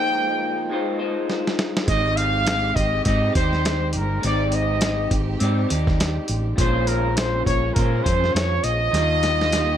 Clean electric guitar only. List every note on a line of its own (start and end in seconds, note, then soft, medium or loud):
0.00 0.70 A#2 medium
0.00 0.71 F3 medium
0.00 0.69 G#3 medium
0.00 0.71 D#4 medium
0.00 0.71 F4 medium
0.00 0.73 C5 medium
0.70 0.99 G#3 medium
0.70 1.00 D#4 medium
0.70 0.99 F4 medium
0.70 0.98 C5 medium
0.99 1.87 G#3 medium
0.99 1.89 D#4 medium
0.99 1.88 F4 medium
0.99 1.92 C5 medium
1.87 3.11 G#3 medium
1.87 3.04 C4 medium
1.87 3.05 D#4 medium
1.91 3.06 G4 medium
1.91 3.07 D5 loud
3.05 3.34 C4 medium
3.05 3.35 D#4 medium
3.05 3.34 G4 medium
3.05 3.32 D5 medium
3.33 4.23 D#4 soft
3.33 4.23 G4 medium
3.33 4.22 D5 medium
4.21 5.45 G#3 medium
4.21 5.39 C4 medium
4.21 5.40 D#4 medium
4.26 5.41 G4 medium
5.40 5.69 C4 medium
5.40 5.70 D#4 medium
5.40 5.70 G4 medium
5.44 5.67 D5 medium
5.69 6.59 D#4 medium
5.69 6.59 G4 medium
5.69 6.58 D5 medium
6.56 7.75 A#2 medium
6.56 8.91 F3 medium
6.56 7.74 G#3 medium
6.56 7.75 C#4 medium
6.61 7.78 F4 medium
6.61 7.77 C5 medium
7.75 8.05 G#3 medium
7.75 8.06 C#4 medium
7.75 8.04 F4 medium
7.75 8.03 C5 medium
8.04 8.94 G#3 soft
8.04 8.94 C#4 medium
8.04 8.94 F4 medium
8.04 8.93 C5 medium
8.91 9.77 D#3 medium
8.91 9.77 G3 medium
8.97 9.77 F4 medium